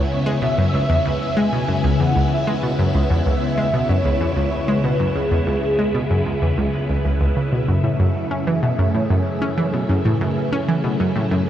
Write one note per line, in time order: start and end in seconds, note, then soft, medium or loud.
0.00 7.64 C#2 medium
0.00 7.64 C#3 medium
0.00 7.64 B3 medium
0.00 7.64 E4 medium
0.00 0.38 C#5 medium
0.26 0.36 G#3 loud
0.42 0.52 B2 medium
0.42 1.39 E5 loud
0.58 0.68 F#2 loud
0.74 0.84 C#2 medium
0.90 0.99 E2 loud
1.05 1.15 C#2 loud
1.37 1.47 G#3 loud
1.37 2.00 G#5 loud
1.53 1.62 B2 medium
1.68 1.78 F#2 loud
1.84 1.94 C#2 loud
2.00 2.10 E2 loud
2.00 2.34 F#5 loud
2.16 2.26 C#2 medium
2.32 2.63 E5 medium
2.47 2.57 G#3 loud
2.63 2.73 B2 loud
2.79 2.89 F#2 loud
2.95 3.04 C#2 loud
3.10 3.20 E2 loud
3.26 3.36 C#2 medium
3.26 3.91 E5 loud
3.58 3.68 G#3 loud
3.73 3.83 B2 loud
3.89 3.99 F#2 loud
3.89 4.86 C#5 loud
4.05 4.15 C#2 medium
4.21 4.31 E2 loud
4.37 4.46 C#2 loud
4.68 4.78 G#3 medium
4.84 4.94 B2 loud
4.84 5.17 B4 medium
5.00 5.10 F#2 loud
5.16 5.26 C#2 loud
5.16 7.05 G#4 medium
5.31 5.41 E2 loud
5.47 5.57 C#2 loud
5.79 5.89 G#3 medium
5.94 6.04 B2 loud
6.10 6.20 F#2 loud
6.26 6.36 C#2 loud
6.42 6.52 E2 loud
6.58 6.68 C#2 loud
6.89 6.99 C#2 medium
7.05 7.20 C#2 medium
7.21 7.31 C#2 loud
7.37 7.47 C#3 medium
7.52 7.67 B2 medium
7.68 7.78 F#2 medium
7.68 11.50 F#2 medium
7.68 11.50 C#3 medium
7.68 11.50 A3 medium
7.68 11.50 E4 medium
7.68 11.50 G#4 medium
7.68 8.27 E5 loud
7.84 7.94 A2 loud
8.00 8.10 F#2 loud
8.31 8.41 C#4 medium
8.31 8.96 E5 loud
8.47 8.57 E3 loud
8.63 8.73 B2 loud
8.79 8.89 F#2 loud
8.94 9.04 A2 medium
8.94 9.91 C#5 loud
9.10 9.20 F#2 loud
9.42 9.52 C#4 medium
9.58 9.68 E3 loud
9.73 9.83 B2 medium
9.89 9.99 F#2 loud
9.89 11.50 B4 medium
10.05 10.15 A2 loud
10.21 10.31 F#2 loud
10.53 10.62 C#4 loud
10.68 10.78 E3 loud
10.84 10.94 B2 medium
11.00 11.10 F#2 loud
11.16 11.26 A2 loud
11.31 11.41 F#2 loud